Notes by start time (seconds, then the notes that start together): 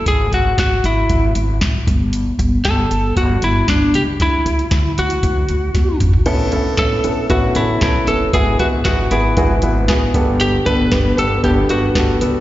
0.06 G#1 G#4, kick, closed hi-hat
0.32 G#1 F#4, closed hi-hat, floor tom
0.58 G#1 F#4, kick, snare, closed hi-hat
0.84 G#1 E4, closed hi-hat
1.09 G#1, kick, closed hi-hat
1.35 G#1, closed hi-hat
1.61 A1, kick, snare, closed hi-hat
1.87 G1, kick, closed hi-hat
2.13 closed hi-hat
2.39 G1, closed hi-hat, floor tom
2.65 G1 A4, kick, snare, closed hi-hat
2.91 G1, closed hi-hat
3.16 G1 F#4, kick, closed hi-hat
3.42 G1 E4, closed hi-hat
3.68 G1 D4, kick, snare, closed hi-hat
3.94 C#2 G4, closed hi-hat
4.20 D2 E4, kick, closed hi-hat
4.46 D2, closed hi-hat, floor tom
4.59 closed hi-hat
4.71 D2, kick, snare, closed hi-hat
4.98 D2 F#4, closed hi-hat
5.10 closed hi-hat
5.23 D2, kick, closed hi-hat
5.49 D2, closed hi-hat
5.75 E2, kick, snare, closed hi-hat
6.00 G#1, closed hi-hat, mid tom
6.13 floor tom
6.26 A1 A2 B3 C#4 E4 A4, kick, crash
6.52 A1 B3 C#4 E4 A4, closed hi-hat, floor tom
6.77 A1 B3 C#4 E4 A4, kick, snare, closed hi-hat
7.04 A1 B3 C#4 E4 A4, closed hi-hat
7.30 A1 B3 C#4 E4 F#4, kick, closed hi-hat
7.55 A1 B3 C#4 E4 A4, closed hi-hat
7.81 B1 B3 C#4 E4 A4, kick, snare, closed hi-hat
8.07 F#1 B3 C#4 E4 A4, closed hi-hat
8.33 G#1 G#2 B3 E4 F#4 G#4, kick, closed hi-hat
8.59 G#1 B3 E4 F#4 B4, closed hi-hat, floor tom
8.85 G#1 B3 E4 F#4 G#4, kick, snare, closed hi-hat
9.11 G#1 B3 E4 F#4 G#4, closed hi-hat
9.37 G#1 B3 E4 F#4 G#4, kick, closed hi-hat
9.62 G#1 B3 E4 F#4 B4, closed hi-hat
9.88 A1 B3 E4 F#4 G#4, kick, snare, closed hi-hat
10.14 G1 G2 B3 D4 G4 A4, kick, closed hi-hat
10.40 G4, closed hi-hat
10.66 G1 B3 D4 G4 A4 B4, closed hi-hat, floor tom
10.92 G1 B3 D4 G4 B4, kick, snare, closed hi-hat
11.17 G1 B3 D4 G4 A4, closed hi-hat
11.43 G1 B3 D4 G4 A4, kick, closed hi-hat
11.69 G1 B3 D4 F#4 G4 B4, closed hi-hat
11.95 G1 B3 D4 G4 A4, kick, snare, closed hi-hat
12.21 C#2 B3 D4 G4 A4, closed hi-hat